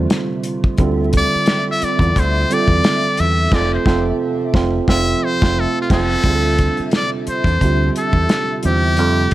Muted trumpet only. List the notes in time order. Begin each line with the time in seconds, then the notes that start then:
1.17 D5
1.71 E5
1.84 D5
2.19 C5
2.53 D5
3.20 E5
3.54 D5
3.74 C5
4.90 E5
5.24 C5
5.60 A4
5.82 F4
5.93 A4
6.96 D5
7.29 C5
7.98 A4
8.66 G4